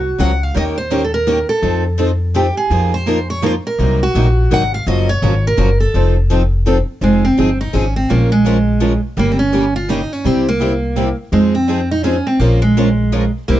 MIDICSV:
0, 0, Header, 1, 5, 480
1, 0, Start_track
1, 0, Tempo, 359066
1, 741, Time_signature, 3, 2, 24, 8
1, 18179, End_track
2, 0, Start_track
2, 0, Title_t, "Steel-string acoustic guitar"
2, 0, Program_c, 0, 25
2, 246, Note_on_c, 0, 54, 89
2, 262, Note_on_c, 0, 65, 99
2, 274, Note_on_c, 0, 70, 92
2, 399, Note_off_c, 0, 54, 0
2, 407, Note_off_c, 0, 65, 0
2, 413, Note_off_c, 0, 70, 0
2, 6520, Note_on_c, 0, 54, 67
2, 6525, Note_on_c, 0, 70, 73
2, 6534, Note_on_c, 0, 65, 75
2, 6784, Note_off_c, 0, 54, 0
2, 6787, Note_off_c, 0, 70, 0
2, 6791, Note_off_c, 0, 65, 0
2, 6981, Note_on_c, 0, 54, 78
2, 6993, Note_on_c, 0, 65, 95
2, 6999, Note_on_c, 0, 70, 90
2, 7125, Note_off_c, 0, 54, 0
2, 7131, Note_off_c, 0, 65, 0
2, 7134, Note_off_c, 0, 70, 0
2, 7448, Note_on_c, 0, 54, 81
2, 7466, Note_on_c, 0, 65, 90
2, 7466, Note_on_c, 0, 70, 91
2, 7599, Note_off_c, 0, 54, 0
2, 7608, Note_off_c, 0, 65, 0
2, 7608, Note_off_c, 0, 70, 0
2, 12255, Note_on_c, 0, 49, 65
2, 12532, Note_off_c, 0, 49, 0
2, 12749, Note_on_c, 0, 49, 81
2, 12890, Note_off_c, 0, 49, 0
2, 13220, Note_on_c, 0, 49, 82
2, 13365, Note_off_c, 0, 49, 0
2, 18179, End_track
3, 0, Start_track
3, 0, Title_t, "Steel-string acoustic guitar"
3, 0, Program_c, 1, 25
3, 0, Note_on_c, 1, 66, 87
3, 269, Note_off_c, 1, 66, 0
3, 272, Note_on_c, 1, 78, 93
3, 576, Note_off_c, 1, 78, 0
3, 576, Note_on_c, 1, 77, 93
3, 754, Note_off_c, 1, 77, 0
3, 763, Note_on_c, 1, 75, 95
3, 838, Note_off_c, 1, 75, 0
3, 1037, Note_on_c, 1, 72, 89
3, 1390, Note_off_c, 1, 72, 0
3, 1395, Note_on_c, 1, 69, 69
3, 1509, Note_off_c, 1, 69, 0
3, 1523, Note_on_c, 1, 70, 91
3, 1964, Note_off_c, 1, 70, 0
3, 1993, Note_on_c, 1, 69, 82
3, 2438, Note_off_c, 1, 69, 0
3, 3155, Note_on_c, 1, 67, 76
3, 3418, Note_off_c, 1, 67, 0
3, 3439, Note_on_c, 1, 68, 81
3, 3929, Note_off_c, 1, 68, 0
3, 3930, Note_on_c, 1, 72, 87
3, 4406, Note_off_c, 1, 72, 0
3, 4411, Note_on_c, 1, 73, 84
3, 4596, Note_off_c, 1, 73, 0
3, 4628, Note_on_c, 1, 72, 84
3, 4700, Note_off_c, 1, 72, 0
3, 4902, Note_on_c, 1, 70, 87
3, 5380, Note_off_c, 1, 70, 0
3, 5385, Note_on_c, 1, 66, 86
3, 6057, Note_off_c, 1, 66, 0
3, 6064, Note_on_c, 1, 78, 101
3, 6334, Note_off_c, 1, 78, 0
3, 6339, Note_on_c, 1, 77, 93
3, 6516, Note_off_c, 1, 77, 0
3, 6521, Note_on_c, 1, 75, 99
3, 6807, Note_on_c, 1, 73, 101
3, 6809, Note_off_c, 1, 75, 0
3, 7292, Note_off_c, 1, 73, 0
3, 7315, Note_on_c, 1, 70, 97
3, 7752, Note_off_c, 1, 70, 0
3, 7758, Note_on_c, 1, 69, 77
3, 8200, Note_off_c, 1, 69, 0
3, 9404, Note_on_c, 1, 56, 70
3, 9686, Note_on_c, 1, 60, 77
3, 9690, Note_off_c, 1, 56, 0
3, 10125, Note_off_c, 1, 60, 0
3, 10169, Note_on_c, 1, 63, 78
3, 10358, Note_off_c, 1, 63, 0
3, 10358, Note_on_c, 1, 61, 86
3, 10639, Note_off_c, 1, 61, 0
3, 10644, Note_on_c, 1, 60, 78
3, 10832, Note_off_c, 1, 60, 0
3, 10833, Note_on_c, 1, 58, 73
3, 11116, Note_off_c, 1, 58, 0
3, 11121, Note_on_c, 1, 56, 78
3, 12022, Note_off_c, 1, 56, 0
3, 12289, Note_on_c, 1, 58, 82
3, 12440, Note_off_c, 1, 58, 0
3, 12455, Note_on_c, 1, 60, 69
3, 12548, Note_off_c, 1, 60, 0
3, 12553, Note_on_c, 1, 61, 92
3, 13039, Note_off_c, 1, 61, 0
3, 13044, Note_on_c, 1, 65, 91
3, 13234, Note_off_c, 1, 65, 0
3, 13234, Note_on_c, 1, 63, 89
3, 13537, Note_off_c, 1, 63, 0
3, 13537, Note_on_c, 1, 61, 83
3, 13720, Note_off_c, 1, 61, 0
3, 13720, Note_on_c, 1, 60, 85
3, 14008, Note_off_c, 1, 60, 0
3, 14017, Note_on_c, 1, 58, 85
3, 14911, Note_off_c, 1, 58, 0
3, 15140, Note_on_c, 1, 56, 75
3, 15435, Note_on_c, 1, 60, 88
3, 15439, Note_off_c, 1, 56, 0
3, 15921, Note_off_c, 1, 60, 0
3, 15927, Note_on_c, 1, 63, 83
3, 16089, Note_off_c, 1, 63, 0
3, 16094, Note_on_c, 1, 61, 82
3, 16397, Note_off_c, 1, 61, 0
3, 16398, Note_on_c, 1, 60, 79
3, 16568, Note_off_c, 1, 60, 0
3, 16568, Note_on_c, 1, 58, 76
3, 16864, Note_off_c, 1, 58, 0
3, 16870, Note_on_c, 1, 56, 77
3, 17777, Note_off_c, 1, 56, 0
3, 18021, Note_on_c, 1, 58, 76
3, 18179, Note_off_c, 1, 58, 0
3, 18179, End_track
4, 0, Start_track
4, 0, Title_t, "Steel-string acoustic guitar"
4, 0, Program_c, 2, 25
4, 260, Note_on_c, 2, 53, 81
4, 261, Note_on_c, 2, 49, 82
4, 265, Note_on_c, 2, 61, 97
4, 266, Note_on_c, 2, 58, 79
4, 275, Note_on_c, 2, 66, 94
4, 406, Note_off_c, 2, 49, 0
4, 406, Note_off_c, 2, 53, 0
4, 408, Note_off_c, 2, 61, 0
4, 409, Note_off_c, 2, 58, 0
4, 413, Note_off_c, 2, 66, 0
4, 738, Note_on_c, 2, 51, 60
4, 744, Note_on_c, 2, 58, 61
4, 744, Note_on_c, 2, 61, 66
4, 747, Note_on_c, 2, 67, 65
4, 755, Note_on_c, 2, 70, 70
4, 1014, Note_off_c, 2, 51, 0
4, 1017, Note_off_c, 2, 58, 0
4, 1017, Note_off_c, 2, 61, 0
4, 1018, Note_off_c, 2, 67, 0
4, 1022, Note_off_c, 2, 70, 0
4, 1215, Note_on_c, 2, 51, 79
4, 1221, Note_on_c, 2, 58, 86
4, 1223, Note_on_c, 2, 70, 92
4, 1225, Note_on_c, 2, 61, 81
4, 1225, Note_on_c, 2, 67, 85
4, 1363, Note_off_c, 2, 51, 0
4, 1366, Note_off_c, 2, 58, 0
4, 1367, Note_off_c, 2, 70, 0
4, 1368, Note_off_c, 2, 61, 0
4, 1368, Note_off_c, 2, 67, 0
4, 1694, Note_on_c, 2, 51, 81
4, 1698, Note_on_c, 2, 58, 76
4, 1705, Note_on_c, 2, 70, 97
4, 1707, Note_on_c, 2, 61, 83
4, 1709, Note_on_c, 2, 67, 84
4, 1843, Note_off_c, 2, 51, 0
4, 1845, Note_off_c, 2, 58, 0
4, 1848, Note_off_c, 2, 70, 0
4, 1849, Note_off_c, 2, 61, 0
4, 1850, Note_off_c, 2, 67, 0
4, 2174, Note_on_c, 2, 53, 63
4, 2179, Note_on_c, 2, 60, 60
4, 2180, Note_on_c, 2, 63, 63
4, 2180, Note_on_c, 2, 69, 68
4, 2452, Note_off_c, 2, 53, 0
4, 2454, Note_off_c, 2, 60, 0
4, 2455, Note_off_c, 2, 63, 0
4, 2455, Note_off_c, 2, 69, 0
4, 2644, Note_on_c, 2, 53, 77
4, 2655, Note_on_c, 2, 60, 84
4, 2659, Note_on_c, 2, 63, 82
4, 2662, Note_on_c, 2, 69, 82
4, 2798, Note_off_c, 2, 53, 0
4, 2803, Note_off_c, 2, 60, 0
4, 2805, Note_off_c, 2, 63, 0
4, 2807, Note_off_c, 2, 69, 0
4, 3136, Note_on_c, 2, 53, 73
4, 3137, Note_on_c, 2, 60, 88
4, 3145, Note_on_c, 2, 63, 88
4, 3146, Note_on_c, 2, 69, 93
4, 3284, Note_off_c, 2, 53, 0
4, 3284, Note_off_c, 2, 60, 0
4, 3288, Note_off_c, 2, 63, 0
4, 3289, Note_off_c, 2, 69, 0
4, 3622, Note_on_c, 2, 53, 62
4, 3628, Note_on_c, 2, 58, 61
4, 3631, Note_on_c, 2, 63, 60
4, 3639, Note_on_c, 2, 65, 61
4, 3643, Note_on_c, 2, 70, 64
4, 3895, Note_off_c, 2, 53, 0
4, 3899, Note_off_c, 2, 58, 0
4, 3900, Note_off_c, 2, 63, 0
4, 3904, Note_off_c, 2, 65, 0
4, 3906, Note_off_c, 2, 70, 0
4, 4104, Note_on_c, 2, 53, 79
4, 4104, Note_on_c, 2, 58, 79
4, 4114, Note_on_c, 2, 65, 81
4, 4120, Note_on_c, 2, 63, 81
4, 4124, Note_on_c, 2, 70, 94
4, 4247, Note_off_c, 2, 58, 0
4, 4248, Note_off_c, 2, 53, 0
4, 4253, Note_off_c, 2, 65, 0
4, 4256, Note_off_c, 2, 63, 0
4, 4257, Note_off_c, 2, 70, 0
4, 4576, Note_on_c, 2, 53, 78
4, 4587, Note_on_c, 2, 58, 89
4, 4590, Note_on_c, 2, 63, 89
4, 4593, Note_on_c, 2, 65, 92
4, 4601, Note_on_c, 2, 70, 94
4, 4723, Note_off_c, 2, 53, 0
4, 4729, Note_off_c, 2, 58, 0
4, 4731, Note_off_c, 2, 63, 0
4, 4732, Note_off_c, 2, 65, 0
4, 4736, Note_off_c, 2, 70, 0
4, 5067, Note_on_c, 2, 48, 57
4, 5073, Note_on_c, 2, 54, 63
4, 5078, Note_on_c, 2, 58, 66
4, 5081, Note_on_c, 2, 70, 70
4, 5087, Note_on_c, 2, 63, 59
4, 5338, Note_off_c, 2, 48, 0
4, 5341, Note_off_c, 2, 54, 0
4, 5343, Note_off_c, 2, 58, 0
4, 5345, Note_off_c, 2, 70, 0
4, 5348, Note_off_c, 2, 63, 0
4, 5550, Note_on_c, 2, 54, 81
4, 5552, Note_on_c, 2, 48, 82
4, 5559, Note_on_c, 2, 58, 79
4, 5559, Note_on_c, 2, 63, 95
4, 5572, Note_on_c, 2, 70, 90
4, 5690, Note_off_c, 2, 54, 0
4, 5691, Note_off_c, 2, 48, 0
4, 5695, Note_off_c, 2, 58, 0
4, 5695, Note_off_c, 2, 63, 0
4, 5701, Note_off_c, 2, 70, 0
4, 6029, Note_on_c, 2, 48, 88
4, 6033, Note_on_c, 2, 58, 85
4, 6035, Note_on_c, 2, 54, 78
4, 6036, Note_on_c, 2, 63, 88
4, 6041, Note_on_c, 2, 70, 93
4, 6170, Note_off_c, 2, 48, 0
4, 6171, Note_off_c, 2, 58, 0
4, 6173, Note_off_c, 2, 54, 0
4, 6173, Note_off_c, 2, 63, 0
4, 6176, Note_off_c, 2, 70, 0
4, 6500, Note_on_c, 2, 49, 62
4, 6508, Note_on_c, 2, 53, 69
4, 6512, Note_on_c, 2, 58, 67
4, 6514, Note_on_c, 2, 61, 73
4, 6515, Note_on_c, 2, 66, 76
4, 6774, Note_off_c, 2, 49, 0
4, 6778, Note_off_c, 2, 53, 0
4, 6780, Note_off_c, 2, 58, 0
4, 6781, Note_off_c, 2, 61, 0
4, 6782, Note_off_c, 2, 66, 0
4, 6983, Note_on_c, 2, 49, 76
4, 6987, Note_on_c, 2, 58, 77
4, 6995, Note_on_c, 2, 53, 85
4, 6997, Note_on_c, 2, 61, 84
4, 7001, Note_on_c, 2, 66, 94
4, 7126, Note_off_c, 2, 49, 0
4, 7128, Note_off_c, 2, 58, 0
4, 7133, Note_off_c, 2, 53, 0
4, 7133, Note_off_c, 2, 61, 0
4, 7136, Note_off_c, 2, 66, 0
4, 7448, Note_on_c, 2, 49, 83
4, 7456, Note_on_c, 2, 53, 89
4, 7457, Note_on_c, 2, 58, 82
4, 7457, Note_on_c, 2, 61, 86
4, 7458, Note_on_c, 2, 66, 93
4, 7599, Note_off_c, 2, 49, 0
4, 7603, Note_off_c, 2, 53, 0
4, 7603, Note_off_c, 2, 58, 0
4, 7603, Note_off_c, 2, 61, 0
4, 7604, Note_off_c, 2, 66, 0
4, 7943, Note_on_c, 2, 53, 62
4, 7948, Note_on_c, 2, 63, 65
4, 7950, Note_on_c, 2, 60, 63
4, 7957, Note_on_c, 2, 69, 70
4, 8215, Note_off_c, 2, 53, 0
4, 8218, Note_off_c, 2, 63, 0
4, 8219, Note_off_c, 2, 60, 0
4, 8222, Note_off_c, 2, 69, 0
4, 8420, Note_on_c, 2, 53, 82
4, 8423, Note_on_c, 2, 60, 88
4, 8432, Note_on_c, 2, 69, 93
4, 8434, Note_on_c, 2, 63, 88
4, 8564, Note_off_c, 2, 53, 0
4, 8566, Note_off_c, 2, 60, 0
4, 8571, Note_off_c, 2, 63, 0
4, 8571, Note_off_c, 2, 69, 0
4, 8901, Note_on_c, 2, 53, 79
4, 8910, Note_on_c, 2, 60, 86
4, 8912, Note_on_c, 2, 63, 86
4, 8912, Note_on_c, 2, 69, 94
4, 9045, Note_off_c, 2, 53, 0
4, 9050, Note_off_c, 2, 60, 0
4, 9050, Note_off_c, 2, 69, 0
4, 9051, Note_off_c, 2, 63, 0
4, 9379, Note_on_c, 2, 53, 55
4, 9382, Note_on_c, 2, 60, 59
4, 9390, Note_on_c, 2, 68, 66
4, 9392, Note_on_c, 2, 63, 58
4, 9653, Note_off_c, 2, 53, 0
4, 9654, Note_off_c, 2, 60, 0
4, 9659, Note_off_c, 2, 63, 0
4, 9659, Note_off_c, 2, 68, 0
4, 9859, Note_on_c, 2, 60, 70
4, 9866, Note_on_c, 2, 53, 81
4, 9873, Note_on_c, 2, 63, 76
4, 9876, Note_on_c, 2, 68, 82
4, 10004, Note_off_c, 2, 60, 0
4, 10008, Note_off_c, 2, 53, 0
4, 10011, Note_off_c, 2, 63, 0
4, 10013, Note_off_c, 2, 68, 0
4, 10334, Note_on_c, 2, 53, 77
4, 10335, Note_on_c, 2, 60, 76
4, 10343, Note_on_c, 2, 63, 76
4, 10343, Note_on_c, 2, 68, 83
4, 10482, Note_off_c, 2, 53, 0
4, 10482, Note_off_c, 2, 60, 0
4, 10486, Note_off_c, 2, 63, 0
4, 10486, Note_off_c, 2, 68, 0
4, 10817, Note_on_c, 2, 53, 54
4, 10824, Note_on_c, 2, 61, 59
4, 10825, Note_on_c, 2, 65, 61
4, 10826, Note_on_c, 2, 56, 58
4, 10832, Note_on_c, 2, 70, 63
4, 11092, Note_off_c, 2, 53, 0
4, 11096, Note_off_c, 2, 61, 0
4, 11096, Note_off_c, 2, 65, 0
4, 11097, Note_off_c, 2, 56, 0
4, 11100, Note_off_c, 2, 70, 0
4, 11305, Note_on_c, 2, 53, 78
4, 11311, Note_on_c, 2, 56, 83
4, 11311, Note_on_c, 2, 61, 81
4, 11316, Note_on_c, 2, 70, 81
4, 11318, Note_on_c, 2, 65, 84
4, 11447, Note_off_c, 2, 53, 0
4, 11450, Note_off_c, 2, 56, 0
4, 11450, Note_off_c, 2, 61, 0
4, 11453, Note_off_c, 2, 70, 0
4, 11454, Note_off_c, 2, 65, 0
4, 11767, Note_on_c, 2, 53, 78
4, 11769, Note_on_c, 2, 61, 82
4, 11774, Note_on_c, 2, 56, 83
4, 11775, Note_on_c, 2, 65, 92
4, 11776, Note_on_c, 2, 70, 89
4, 11918, Note_off_c, 2, 53, 0
4, 11919, Note_off_c, 2, 61, 0
4, 11922, Note_off_c, 2, 56, 0
4, 11923, Note_off_c, 2, 65, 0
4, 11923, Note_off_c, 2, 70, 0
4, 12254, Note_on_c, 2, 55, 54
4, 12263, Note_on_c, 2, 58, 64
4, 12265, Note_on_c, 2, 61, 67
4, 12265, Note_on_c, 2, 67, 61
4, 12531, Note_off_c, 2, 55, 0
4, 12536, Note_off_c, 2, 58, 0
4, 12537, Note_off_c, 2, 61, 0
4, 12537, Note_off_c, 2, 67, 0
4, 12734, Note_on_c, 2, 55, 76
4, 12743, Note_on_c, 2, 58, 70
4, 12743, Note_on_c, 2, 61, 83
4, 12752, Note_on_c, 2, 67, 86
4, 12882, Note_off_c, 2, 55, 0
4, 12887, Note_off_c, 2, 58, 0
4, 12887, Note_off_c, 2, 61, 0
4, 12891, Note_off_c, 2, 67, 0
4, 13221, Note_on_c, 2, 55, 73
4, 13221, Note_on_c, 2, 58, 75
4, 13228, Note_on_c, 2, 61, 87
4, 13234, Note_on_c, 2, 67, 89
4, 13366, Note_off_c, 2, 55, 0
4, 13366, Note_off_c, 2, 58, 0
4, 13369, Note_off_c, 2, 61, 0
4, 13372, Note_off_c, 2, 67, 0
4, 13706, Note_on_c, 2, 48, 55
4, 13709, Note_on_c, 2, 55, 64
4, 13710, Note_on_c, 2, 60, 63
4, 13715, Note_on_c, 2, 64, 68
4, 13720, Note_on_c, 2, 67, 72
4, 13977, Note_off_c, 2, 48, 0
4, 13979, Note_off_c, 2, 55, 0
4, 13979, Note_off_c, 2, 60, 0
4, 13982, Note_off_c, 2, 64, 0
4, 13984, Note_off_c, 2, 67, 0
4, 14179, Note_on_c, 2, 48, 68
4, 14180, Note_on_c, 2, 55, 70
4, 14190, Note_on_c, 2, 60, 76
4, 14190, Note_on_c, 2, 64, 84
4, 14192, Note_on_c, 2, 67, 87
4, 14325, Note_off_c, 2, 48, 0
4, 14326, Note_off_c, 2, 55, 0
4, 14331, Note_off_c, 2, 60, 0
4, 14331, Note_off_c, 2, 64, 0
4, 14331, Note_off_c, 2, 67, 0
4, 14654, Note_on_c, 2, 48, 77
4, 14657, Note_on_c, 2, 55, 75
4, 14665, Note_on_c, 2, 60, 75
4, 14667, Note_on_c, 2, 64, 76
4, 14676, Note_on_c, 2, 67, 80
4, 14803, Note_off_c, 2, 48, 0
4, 14804, Note_off_c, 2, 55, 0
4, 14808, Note_off_c, 2, 60, 0
4, 14809, Note_off_c, 2, 64, 0
4, 14814, Note_off_c, 2, 67, 0
4, 15135, Note_on_c, 2, 53, 59
4, 15140, Note_on_c, 2, 60, 59
4, 15142, Note_on_c, 2, 63, 60
4, 15152, Note_on_c, 2, 68, 64
4, 15412, Note_off_c, 2, 53, 0
4, 15415, Note_off_c, 2, 60, 0
4, 15416, Note_off_c, 2, 63, 0
4, 15421, Note_off_c, 2, 68, 0
4, 15627, Note_on_c, 2, 53, 78
4, 15633, Note_on_c, 2, 63, 79
4, 15635, Note_on_c, 2, 60, 70
4, 15642, Note_on_c, 2, 68, 83
4, 15769, Note_off_c, 2, 53, 0
4, 15772, Note_off_c, 2, 63, 0
4, 15773, Note_off_c, 2, 60, 0
4, 15777, Note_off_c, 2, 68, 0
4, 16102, Note_on_c, 2, 53, 73
4, 16107, Note_on_c, 2, 60, 86
4, 16111, Note_on_c, 2, 63, 86
4, 16117, Note_on_c, 2, 68, 89
4, 16247, Note_off_c, 2, 53, 0
4, 16249, Note_off_c, 2, 60, 0
4, 16251, Note_off_c, 2, 63, 0
4, 16254, Note_off_c, 2, 68, 0
4, 16584, Note_on_c, 2, 53, 55
4, 16586, Note_on_c, 2, 56, 53
4, 16589, Note_on_c, 2, 61, 60
4, 16595, Note_on_c, 2, 70, 68
4, 16598, Note_on_c, 2, 65, 65
4, 16857, Note_off_c, 2, 53, 0
4, 16858, Note_off_c, 2, 56, 0
4, 16860, Note_off_c, 2, 61, 0
4, 16863, Note_off_c, 2, 70, 0
4, 16864, Note_off_c, 2, 65, 0
4, 17071, Note_on_c, 2, 56, 74
4, 17074, Note_on_c, 2, 53, 78
4, 17078, Note_on_c, 2, 65, 86
4, 17080, Note_on_c, 2, 61, 85
4, 17085, Note_on_c, 2, 70, 83
4, 17211, Note_off_c, 2, 56, 0
4, 17213, Note_off_c, 2, 53, 0
4, 17215, Note_off_c, 2, 65, 0
4, 17216, Note_off_c, 2, 61, 0
4, 17219, Note_off_c, 2, 70, 0
4, 17542, Note_on_c, 2, 56, 83
4, 17544, Note_on_c, 2, 53, 80
4, 17546, Note_on_c, 2, 65, 87
4, 17550, Note_on_c, 2, 61, 77
4, 17553, Note_on_c, 2, 70, 85
4, 17687, Note_off_c, 2, 56, 0
4, 17688, Note_off_c, 2, 53, 0
4, 17689, Note_off_c, 2, 65, 0
4, 17691, Note_off_c, 2, 61, 0
4, 17693, Note_off_c, 2, 70, 0
4, 18024, Note_on_c, 2, 64, 62
4, 18026, Note_on_c, 2, 48, 57
4, 18027, Note_on_c, 2, 55, 65
4, 18028, Note_on_c, 2, 60, 65
4, 18033, Note_on_c, 2, 67, 63
4, 18179, Note_off_c, 2, 48, 0
4, 18179, Note_off_c, 2, 55, 0
4, 18179, Note_off_c, 2, 60, 0
4, 18179, Note_off_c, 2, 64, 0
4, 18179, Note_off_c, 2, 67, 0
4, 18179, End_track
5, 0, Start_track
5, 0, Title_t, "Upright bass"
5, 0, Program_c, 3, 32
5, 0, Note_on_c, 3, 36, 76
5, 188, Note_off_c, 3, 36, 0
5, 251, Note_on_c, 3, 37, 78
5, 663, Note_off_c, 3, 37, 0
5, 744, Note_on_c, 3, 39, 85
5, 1895, Note_off_c, 3, 39, 0
5, 2171, Note_on_c, 3, 41, 82
5, 3327, Note_off_c, 3, 41, 0
5, 3612, Note_on_c, 3, 41, 80
5, 4767, Note_off_c, 3, 41, 0
5, 5060, Note_on_c, 3, 36, 82
5, 5444, Note_off_c, 3, 36, 0
5, 5543, Note_on_c, 3, 34, 83
5, 5949, Note_off_c, 3, 34, 0
5, 6025, Note_on_c, 3, 32, 81
5, 6431, Note_off_c, 3, 32, 0
5, 6505, Note_on_c, 3, 30, 83
5, 6886, Note_off_c, 3, 30, 0
5, 6979, Note_on_c, 3, 32, 84
5, 7387, Note_off_c, 3, 32, 0
5, 7451, Note_on_c, 3, 30, 77
5, 7862, Note_off_c, 3, 30, 0
5, 7940, Note_on_c, 3, 29, 83
5, 9091, Note_off_c, 3, 29, 0
5, 9374, Note_on_c, 3, 29, 78
5, 9760, Note_off_c, 3, 29, 0
5, 9866, Note_on_c, 3, 31, 71
5, 10271, Note_off_c, 3, 31, 0
5, 10342, Note_on_c, 3, 32, 67
5, 10749, Note_off_c, 3, 32, 0
5, 10828, Note_on_c, 3, 34, 77
5, 11977, Note_off_c, 3, 34, 0
5, 12258, Note_on_c, 3, 31, 77
5, 13411, Note_off_c, 3, 31, 0
5, 13700, Note_on_c, 3, 36, 78
5, 14853, Note_off_c, 3, 36, 0
5, 15132, Note_on_c, 3, 41, 80
5, 16288, Note_off_c, 3, 41, 0
5, 16568, Note_on_c, 3, 34, 78
5, 17726, Note_off_c, 3, 34, 0
5, 18030, Note_on_c, 3, 36, 78
5, 18179, Note_off_c, 3, 36, 0
5, 18179, End_track
0, 0, End_of_file